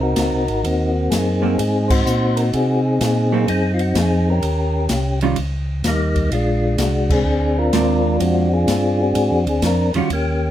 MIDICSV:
0, 0, Header, 1, 5, 480
1, 0, Start_track
1, 0, Tempo, 473186
1, 648, Time_signature, 4, 2, 24, 8
1, 10659, End_track
2, 0, Start_track
2, 0, Title_t, "Tonewheel organ"
2, 0, Program_c, 0, 16
2, 0, Note_on_c, 0, 60, 62
2, 8, Note_on_c, 0, 70, 86
2, 28, Note_on_c, 0, 66, 64
2, 30, Note_on_c, 0, 63, 59
2, 454, Note_off_c, 0, 60, 0
2, 632, Note_off_c, 0, 66, 0
2, 644, Note_on_c, 0, 66, 84
2, 661, Note_on_c, 0, 60, 68
2, 664, Note_on_c, 0, 58, 58
2, 668, Note_off_c, 0, 70, 0
2, 939, Note_off_c, 0, 63, 0
2, 1120, Note_on_c, 0, 68, 74
2, 1129, Note_off_c, 0, 60, 0
2, 1141, Note_off_c, 0, 66, 0
2, 1142, Note_on_c, 0, 60, 63
2, 1146, Note_on_c, 0, 63, 63
2, 1575, Note_off_c, 0, 58, 0
2, 1593, Note_off_c, 0, 68, 0
2, 1605, Note_on_c, 0, 68, 94
2, 1614, Note_off_c, 0, 63, 0
2, 1616, Note_off_c, 0, 60, 0
2, 1626, Note_on_c, 0, 63, 74
2, 1628, Note_on_c, 0, 60, 68
2, 1908, Note_on_c, 0, 72, 90
2, 1924, Note_off_c, 0, 63, 0
2, 1936, Note_off_c, 0, 68, 0
2, 1936, Note_on_c, 0, 63, 70
2, 1936, Note_on_c, 0, 66, 67
2, 2397, Note_on_c, 0, 70, 87
2, 2413, Note_off_c, 0, 72, 0
2, 2472, Note_off_c, 0, 70, 0
2, 2538, Note_off_c, 0, 60, 0
2, 2577, Note_on_c, 0, 68, 91
2, 2593, Note_off_c, 0, 63, 0
2, 2598, Note_on_c, 0, 60, 70
2, 2605, Note_on_c, 0, 63, 67
2, 2851, Note_off_c, 0, 66, 0
2, 3502, Note_off_c, 0, 60, 0
2, 3506, Note_off_c, 0, 63, 0
2, 3514, Note_off_c, 0, 68, 0
2, 3526, Note_on_c, 0, 68, 96
2, 3542, Note_on_c, 0, 63, 68
2, 3547, Note_on_c, 0, 60, 64
2, 3774, Note_off_c, 0, 68, 0
2, 3793, Note_on_c, 0, 65, 56
2, 3860, Note_off_c, 0, 65, 0
2, 3863, Note_on_c, 0, 66, 84
2, 4020, Note_off_c, 0, 66, 0
2, 4035, Note_on_c, 0, 68, 96
2, 4350, Note_off_c, 0, 68, 0
2, 4363, Note_on_c, 0, 70, 74
2, 4376, Note_on_c, 0, 61, 58
2, 4377, Note_on_c, 0, 67, 56
2, 4454, Note_off_c, 0, 63, 0
2, 4456, Note_off_c, 0, 60, 0
2, 4944, Note_off_c, 0, 70, 0
2, 5270, Note_off_c, 0, 61, 0
2, 5271, Note_off_c, 0, 67, 0
2, 5954, Note_on_c, 0, 63, 81
2, 5962, Note_on_c, 0, 55, 58
2, 5964, Note_on_c, 0, 58, 59
2, 6391, Note_off_c, 0, 55, 0
2, 6393, Note_off_c, 0, 58, 0
2, 6419, Note_on_c, 0, 65, 84
2, 6434, Note_off_c, 0, 63, 0
2, 6436, Note_on_c, 0, 62, 64
2, 6437, Note_on_c, 0, 56, 59
2, 6859, Note_off_c, 0, 65, 0
2, 6887, Note_on_c, 0, 66, 78
2, 7216, Note_off_c, 0, 66, 0
2, 7221, Note_on_c, 0, 68, 90
2, 7222, Note_off_c, 0, 62, 0
2, 7229, Note_on_c, 0, 60, 68
2, 7234, Note_on_c, 0, 62, 68
2, 7341, Note_off_c, 0, 56, 0
2, 7680, Note_off_c, 0, 62, 0
2, 7690, Note_on_c, 0, 65, 68
2, 7692, Note_on_c, 0, 62, 64
2, 7692, Note_on_c, 0, 70, 94
2, 7707, Note_off_c, 0, 68, 0
2, 8137, Note_off_c, 0, 60, 0
2, 8288, Note_off_c, 0, 70, 0
2, 8324, Note_off_c, 0, 62, 0
2, 8331, Note_on_c, 0, 60, 63
2, 8331, Note_on_c, 0, 66, 87
2, 8336, Note_on_c, 0, 62, 63
2, 8607, Note_off_c, 0, 65, 0
2, 8645, Note_off_c, 0, 62, 0
2, 8657, Note_on_c, 0, 68, 68
2, 8658, Note_off_c, 0, 66, 0
2, 8658, Note_on_c, 0, 62, 66
2, 8667, Note_on_c, 0, 65, 90
2, 9126, Note_off_c, 0, 60, 0
2, 9138, Note_on_c, 0, 60, 65
2, 9139, Note_off_c, 0, 62, 0
2, 9151, Note_off_c, 0, 65, 0
2, 9151, Note_on_c, 0, 62, 61
2, 9153, Note_on_c, 0, 66, 109
2, 9571, Note_off_c, 0, 68, 0
2, 9587, Note_off_c, 0, 66, 0
2, 9625, Note_on_c, 0, 68, 83
2, 9765, Note_off_c, 0, 68, 0
2, 9789, Note_on_c, 0, 70, 93
2, 10052, Note_off_c, 0, 60, 0
2, 10058, Note_off_c, 0, 62, 0
2, 10076, Note_off_c, 0, 70, 0
2, 10125, Note_on_c, 0, 66, 79
2, 10256, Note_off_c, 0, 66, 0
2, 10272, Note_on_c, 0, 61, 56
2, 10279, Note_on_c, 0, 58, 58
2, 10293, Note_on_c, 0, 67, 78
2, 10659, Note_off_c, 0, 58, 0
2, 10659, Note_off_c, 0, 61, 0
2, 10659, Note_off_c, 0, 67, 0
2, 10659, End_track
3, 0, Start_track
3, 0, Title_t, "Hollow-body jazz guitar"
3, 0, Program_c, 1, 26
3, 1441, Note_on_c, 1, 54, 52
3, 1447, Note_on_c, 1, 58, 58
3, 1452, Note_on_c, 1, 60, 59
3, 1589, Note_off_c, 1, 54, 0
3, 1592, Note_off_c, 1, 58, 0
3, 1594, Note_off_c, 1, 60, 0
3, 3372, Note_on_c, 1, 54, 56
3, 3381, Note_on_c, 1, 58, 67
3, 3386, Note_on_c, 1, 60, 63
3, 3514, Note_off_c, 1, 54, 0
3, 3519, Note_off_c, 1, 58, 0
3, 3521, Note_off_c, 1, 60, 0
3, 5299, Note_on_c, 1, 51, 68
3, 5301, Note_on_c, 1, 55, 70
3, 5303, Note_on_c, 1, 61, 67
3, 5308, Note_on_c, 1, 65, 73
3, 5437, Note_off_c, 1, 51, 0
3, 5438, Note_off_c, 1, 55, 0
3, 5439, Note_off_c, 1, 61, 0
3, 5441, Note_off_c, 1, 65, 0
3, 7842, Note_on_c, 1, 56, 55
3, 7848, Note_on_c, 1, 60, 57
3, 7858, Note_on_c, 1, 62, 59
3, 8580, Note_off_c, 1, 56, 0
3, 8583, Note_off_c, 1, 60, 0
3, 8588, Note_off_c, 1, 62, 0
3, 10093, Note_on_c, 1, 51, 64
3, 10101, Note_on_c, 1, 55, 60
3, 10104, Note_on_c, 1, 61, 65
3, 10104, Note_on_c, 1, 65, 70
3, 10234, Note_off_c, 1, 51, 0
3, 10238, Note_off_c, 1, 55, 0
3, 10239, Note_off_c, 1, 65, 0
3, 10240, Note_off_c, 1, 61, 0
3, 10659, End_track
4, 0, Start_track
4, 0, Title_t, "Tonewheel organ"
4, 0, Program_c, 2, 16
4, 0, Note_on_c, 2, 36, 76
4, 151, Note_off_c, 2, 36, 0
4, 166, Note_on_c, 2, 37, 82
4, 322, Note_off_c, 2, 37, 0
4, 328, Note_on_c, 2, 36, 46
4, 488, Note_off_c, 2, 36, 0
4, 493, Note_on_c, 2, 32, 63
4, 640, Note_off_c, 2, 32, 0
4, 645, Note_on_c, 2, 39, 74
4, 1112, Note_off_c, 2, 39, 0
4, 1127, Note_on_c, 2, 42, 84
4, 1593, Note_off_c, 2, 42, 0
4, 1608, Note_on_c, 2, 44, 83
4, 2074, Note_off_c, 2, 44, 0
4, 2091, Note_on_c, 2, 46, 78
4, 2555, Note_off_c, 2, 46, 0
4, 2573, Note_on_c, 2, 48, 85
4, 3036, Note_off_c, 2, 48, 0
4, 3050, Note_on_c, 2, 46, 88
4, 3515, Note_off_c, 2, 46, 0
4, 3530, Note_on_c, 2, 42, 83
4, 3994, Note_off_c, 2, 42, 0
4, 4006, Note_on_c, 2, 41, 91
4, 4472, Note_off_c, 2, 41, 0
4, 4490, Note_on_c, 2, 39, 83
4, 4954, Note_off_c, 2, 39, 0
4, 4966, Note_on_c, 2, 36, 85
4, 5432, Note_off_c, 2, 36, 0
4, 5443, Note_on_c, 2, 37, 76
4, 5910, Note_off_c, 2, 37, 0
4, 5927, Note_on_c, 2, 39, 81
4, 6392, Note_off_c, 2, 39, 0
4, 6399, Note_on_c, 2, 34, 82
4, 6868, Note_off_c, 2, 34, 0
4, 6878, Note_on_c, 2, 36, 83
4, 7347, Note_off_c, 2, 36, 0
4, 7352, Note_on_c, 2, 38, 81
4, 7824, Note_off_c, 2, 38, 0
4, 7838, Note_on_c, 2, 39, 84
4, 8307, Note_off_c, 2, 39, 0
4, 8316, Note_on_c, 2, 41, 78
4, 8786, Note_off_c, 2, 41, 0
4, 8797, Note_on_c, 2, 43, 85
4, 9267, Note_off_c, 2, 43, 0
4, 9282, Note_on_c, 2, 44, 90
4, 9439, Note_off_c, 2, 44, 0
4, 9449, Note_on_c, 2, 41, 55
4, 9600, Note_on_c, 2, 38, 61
4, 9607, Note_off_c, 2, 41, 0
4, 9752, Note_off_c, 2, 38, 0
4, 9756, Note_on_c, 2, 41, 80
4, 10058, Note_off_c, 2, 41, 0
4, 10084, Note_on_c, 2, 41, 40
4, 10165, Note_off_c, 2, 41, 0
4, 10244, Note_on_c, 2, 39, 77
4, 10659, Note_off_c, 2, 39, 0
4, 10659, End_track
5, 0, Start_track
5, 0, Title_t, "Drums"
5, 164, Note_on_c, 9, 44, 52
5, 164, Note_on_c, 9, 51, 67
5, 167, Note_on_c, 9, 38, 69
5, 168, Note_on_c, 9, 36, 22
5, 265, Note_off_c, 9, 44, 0
5, 265, Note_off_c, 9, 51, 0
5, 268, Note_off_c, 9, 38, 0
5, 270, Note_off_c, 9, 36, 0
5, 488, Note_on_c, 9, 51, 43
5, 590, Note_off_c, 9, 51, 0
5, 650, Note_on_c, 9, 36, 18
5, 654, Note_on_c, 9, 51, 57
5, 752, Note_off_c, 9, 36, 0
5, 756, Note_off_c, 9, 51, 0
5, 1130, Note_on_c, 9, 36, 24
5, 1132, Note_on_c, 9, 44, 56
5, 1132, Note_on_c, 9, 51, 67
5, 1135, Note_on_c, 9, 38, 65
5, 1231, Note_off_c, 9, 36, 0
5, 1234, Note_off_c, 9, 44, 0
5, 1234, Note_off_c, 9, 51, 0
5, 1237, Note_off_c, 9, 38, 0
5, 1609, Note_on_c, 9, 36, 19
5, 1614, Note_on_c, 9, 51, 60
5, 1711, Note_off_c, 9, 36, 0
5, 1715, Note_off_c, 9, 51, 0
5, 1929, Note_on_c, 9, 36, 83
5, 1930, Note_on_c, 9, 49, 74
5, 2031, Note_off_c, 9, 36, 0
5, 2031, Note_off_c, 9, 49, 0
5, 2093, Note_on_c, 9, 44, 64
5, 2195, Note_off_c, 9, 44, 0
5, 2404, Note_on_c, 9, 51, 48
5, 2505, Note_off_c, 9, 51, 0
5, 2570, Note_on_c, 9, 51, 54
5, 2571, Note_on_c, 9, 36, 23
5, 2672, Note_off_c, 9, 36, 0
5, 2672, Note_off_c, 9, 51, 0
5, 3051, Note_on_c, 9, 44, 51
5, 3051, Note_on_c, 9, 51, 63
5, 3052, Note_on_c, 9, 36, 19
5, 3054, Note_on_c, 9, 38, 66
5, 3152, Note_off_c, 9, 44, 0
5, 3152, Note_off_c, 9, 51, 0
5, 3153, Note_off_c, 9, 36, 0
5, 3155, Note_off_c, 9, 38, 0
5, 3531, Note_on_c, 9, 36, 16
5, 3532, Note_on_c, 9, 51, 56
5, 3633, Note_off_c, 9, 36, 0
5, 3633, Note_off_c, 9, 51, 0
5, 3845, Note_on_c, 9, 51, 43
5, 3947, Note_off_c, 9, 51, 0
5, 4009, Note_on_c, 9, 44, 49
5, 4009, Note_on_c, 9, 51, 68
5, 4011, Note_on_c, 9, 36, 22
5, 4012, Note_on_c, 9, 38, 71
5, 4111, Note_off_c, 9, 44, 0
5, 4111, Note_off_c, 9, 51, 0
5, 4112, Note_off_c, 9, 36, 0
5, 4114, Note_off_c, 9, 38, 0
5, 4489, Note_on_c, 9, 51, 59
5, 4490, Note_on_c, 9, 36, 18
5, 4590, Note_off_c, 9, 51, 0
5, 4592, Note_off_c, 9, 36, 0
5, 4960, Note_on_c, 9, 44, 57
5, 4960, Note_on_c, 9, 51, 62
5, 4963, Note_on_c, 9, 38, 65
5, 4967, Note_on_c, 9, 36, 17
5, 5062, Note_off_c, 9, 44, 0
5, 5062, Note_off_c, 9, 51, 0
5, 5065, Note_off_c, 9, 38, 0
5, 5068, Note_off_c, 9, 36, 0
5, 5284, Note_on_c, 9, 51, 43
5, 5386, Note_off_c, 9, 51, 0
5, 5437, Note_on_c, 9, 51, 56
5, 5445, Note_on_c, 9, 36, 23
5, 5539, Note_off_c, 9, 51, 0
5, 5546, Note_off_c, 9, 36, 0
5, 5924, Note_on_c, 9, 36, 19
5, 5925, Note_on_c, 9, 44, 52
5, 5925, Note_on_c, 9, 51, 64
5, 5928, Note_on_c, 9, 38, 67
5, 6026, Note_off_c, 9, 36, 0
5, 6026, Note_off_c, 9, 44, 0
5, 6026, Note_off_c, 9, 51, 0
5, 6029, Note_off_c, 9, 38, 0
5, 6244, Note_on_c, 9, 36, 46
5, 6245, Note_on_c, 9, 51, 44
5, 6345, Note_off_c, 9, 36, 0
5, 6346, Note_off_c, 9, 51, 0
5, 6407, Note_on_c, 9, 51, 52
5, 6508, Note_off_c, 9, 51, 0
5, 6880, Note_on_c, 9, 36, 23
5, 6880, Note_on_c, 9, 44, 56
5, 6880, Note_on_c, 9, 51, 68
5, 6883, Note_on_c, 9, 38, 66
5, 6982, Note_off_c, 9, 36, 0
5, 6982, Note_off_c, 9, 44, 0
5, 6982, Note_off_c, 9, 51, 0
5, 6985, Note_off_c, 9, 38, 0
5, 7201, Note_on_c, 9, 36, 80
5, 7206, Note_on_c, 9, 49, 71
5, 7302, Note_off_c, 9, 36, 0
5, 7307, Note_off_c, 9, 49, 0
5, 7839, Note_on_c, 9, 36, 21
5, 7840, Note_on_c, 9, 44, 49
5, 7840, Note_on_c, 9, 51, 66
5, 7843, Note_on_c, 9, 38, 65
5, 7941, Note_off_c, 9, 36, 0
5, 7941, Note_off_c, 9, 44, 0
5, 7941, Note_off_c, 9, 51, 0
5, 7944, Note_off_c, 9, 38, 0
5, 8320, Note_on_c, 9, 36, 23
5, 8321, Note_on_c, 9, 51, 61
5, 8421, Note_off_c, 9, 36, 0
5, 8422, Note_off_c, 9, 51, 0
5, 8802, Note_on_c, 9, 44, 55
5, 8802, Note_on_c, 9, 51, 66
5, 8803, Note_on_c, 9, 36, 24
5, 8805, Note_on_c, 9, 38, 63
5, 8903, Note_off_c, 9, 44, 0
5, 8903, Note_off_c, 9, 51, 0
5, 8904, Note_off_c, 9, 36, 0
5, 8906, Note_off_c, 9, 38, 0
5, 9282, Note_on_c, 9, 51, 63
5, 9283, Note_on_c, 9, 36, 18
5, 9384, Note_off_c, 9, 51, 0
5, 9385, Note_off_c, 9, 36, 0
5, 9605, Note_on_c, 9, 51, 44
5, 9706, Note_off_c, 9, 51, 0
5, 9760, Note_on_c, 9, 44, 57
5, 9760, Note_on_c, 9, 51, 62
5, 9762, Note_on_c, 9, 36, 26
5, 9763, Note_on_c, 9, 38, 70
5, 9862, Note_off_c, 9, 44, 0
5, 9862, Note_off_c, 9, 51, 0
5, 9864, Note_off_c, 9, 36, 0
5, 9865, Note_off_c, 9, 38, 0
5, 10083, Note_on_c, 9, 51, 47
5, 10184, Note_off_c, 9, 51, 0
5, 10245, Note_on_c, 9, 36, 17
5, 10247, Note_on_c, 9, 51, 55
5, 10347, Note_off_c, 9, 36, 0
5, 10348, Note_off_c, 9, 51, 0
5, 10659, End_track
0, 0, End_of_file